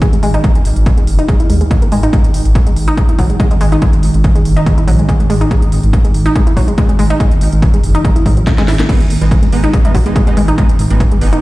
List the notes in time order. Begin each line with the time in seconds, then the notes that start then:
Already playing: G#2 D#3
0.02 G#3, kick, closed hi-hat
0.13 G#3, closed hi-hat
0.23 G#1 G#3, open hi-hat
0.34 D#4, closed hi-hat
0.44 G#3, kick, closed hi-hat
0.55 closed hi-hat
0.65 G#1, open hi-hat
0.76 G#1, closed hi-hat
0.86 kick, closed hi-hat
0.97 G#3, closed hi-hat
1.07 F#1, open hi-hat
1.19 D#4, closed hi-hat
1.28 G#3, kick, closed hi-hat
1.40 E4, closed hi-hat
1.50 D#2 G#3, open hi-hat
1.61 G#3, closed hi-hat
1.71 G#3, kick, closed hi-hat
1.82 A#3, closed hi-hat
1.92 G#1 G#3, open hi-hat
2.03 D#4, closed hi-hat
2.13 G#3, kick, closed hi-hat
2.24 closed hi-hat
2.34 G#1, open hi-hat
2.45 G#1, closed hi-hat
2.55 kick, closed hi-hat
2.66 G#3, closed hi-hat
2.76 G#1, open hi-hat
2.88 D#4, closed hi-hat
2.97 G#3, kick, closed hi-hat
3.09 E4, closed hi-hat
3.19 G#1 F#3, kick, open hi-hat
3.30 G#3, closed hi-hat
3.40 G#3, kick, closed hi-hat
3.51 G#3, closed hi-hat
3.61 G#1 G#3, open hi-hat
3.72 D#4, closed hi-hat
3.82 G#3, kick, closed hi-hat
3.93 closed hi-hat
4.03 G#1, open hi-hat
4.14 G#1, closed hi-hat
4.24 kick, closed hi-hat
4.35 G#3, closed hi-hat
4.45 F#1, open hi-hat
4.56 D#4, closed hi-hat
4.66 G#3, kick, closed hi-hat
4.78 E4, closed hi-hat
4.88 A#1 F#3, open hi-hat
4.99 G#3, closed hi-hat
5.09 G#3, kick, closed hi-hat
5.20 G#3, closed hi-hat
5.30 G#1 G#3, open hi-hat
5.41 D#4, closed hi-hat
5.51 G#3, kick, closed hi-hat
5.62 closed hi-hat
5.72 G#1, open hi-hat
5.83 G#1, closed hi-hat
5.93 kick, closed hi-hat
6.05 G#3, closed hi-hat
6.14 G#1, open hi-hat
6.26 D#4, closed hi-hat
6.36 G#3, kick, closed hi-hat
6.47 E4, closed hi-hat
6.57 G#1 F#3, kick, open hi-hat
6.68 G#3, closed hi-hat
6.78 G#3, kick, closed hi-hat
6.89 G#3, closed hi-hat
6.99 G#1 G#3, open hi-hat
7.10 D#4, closed hi-hat
7.20 G#3, kick, closed hi-hat
7.31 closed hi-hat
7.41 G#1, open hi-hat
7.52 G#1, closed hi-hat
7.62 kick, closed hi-hat
7.74 G#3, closed hi-hat
7.83 F#1, open hi-hat
7.95 D#4, closed hi-hat
8.05 G#3, kick, closed hi-hat
8.16 E4, closed hi-hat
8.26 G#2 G#3, kick, open hi-hat
8.37 F#3, closed hi-hat
8.47 G#3, kick, snare, closed hi-hat
8.58 G#3, snare, closed hi-hat
8.68 G#1 E4, snare, open hi-hat
8.79 A#3, snare, closed hi-hat
8.89 G#2 D#3 G#3 B3 D#4, kick, closed hi-hat, crash
9.00 closed hi-hat
9.10 G#1, open hi-hat
9.21 G#1 G#3 B3 D#4, closed hi-hat
9.31 kick, closed hi-hat
9.43 G#3, closed hi-hat
9.52 G#1 G#3 B3 D#4, open hi-hat
9.64 D#4, closed hi-hat
9.73 G#3, kick, closed hi-hat
9.85 G#3 B3 D#4 E4, closed hi-hat
9.95 G#1 F#3, kick, open hi-hat
10.06 G#3 B3 D#4, closed hi-hat
10.16 G#3, kick, closed hi-hat
10.27 G#3 B3 D#4, closed hi-hat
10.37 G#1 G#3, open hi-hat
10.48 D#4, closed hi-hat
10.58 G#3 B3 D#4, kick, closed hi-hat
10.69 closed hi-hat
10.79 G#1, open hi-hat
10.90 G#1 G#3 B3 D#4, closed hi-hat
11.00 kick, closed hi-hat
11.11 G#3, closed hi-hat
11.21 F#1 G#3 B3 D#4, open hi-hat
11.33 D#4, closed hi-hat